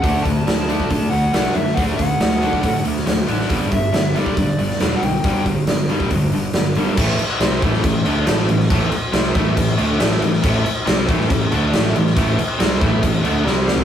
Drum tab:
CC |----------------|----------------|----------------|----------------|
HH |o-o-o-o-o-o-o-o-|o-o-o-o-o-o-o-o-|o-o-o-o-o-o-o-o-|o-o-o-o-o-o-o-o-|
SD |----o-------o--o|----o------oo--o|----o------oo---|----o-------o---|
FT |----------------|----------------|----------------|----------------|
BD |o-o----oo-------|o-o----oo-------|o-o----oo-------|o-o----oo-------|

CC |x-x-x-x-x-x-x-x-|x-x-x-x-x-x-x-x-|x-x-x-x-x-x-x-x-|x-x-x-x-x-x-----|
HH |----------------|----------------|----------------|----------------|
SD |----o--o----o--o|----o-------o--o|----o--o----o--o|----o-------o-o-|
FT |----------------|----------------|----------------|---------------o|
BD |o-----o-o-------|o-----o-o-------|o-----o-o-------|o-----o-o-------|